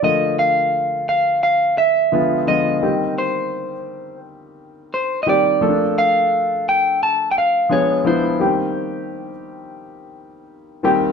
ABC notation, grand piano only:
X:1
M:4/4
L:1/16
Q:"Swing 16ths" 1/4=86
K:Cdor
V:1 name="Grand piano"
[D,F,A,B,F]4- [D,F,A,B,F] z6 z [D,F,^G,=B,F]2 [D,F,G,B,F]2 | [E,G,B,CG]4- [E,G,B,CG] z8 z [E,G,B,CG]2 | [F,A,B,CDA]4- [F,A,B,CDA] z6 z [F,^G,=B,D^G]2 [F,G,B,D=E]2 | [E,G,B,CG]4- [E,G,B,CG] z8 z [E,G,B,CG]2 |]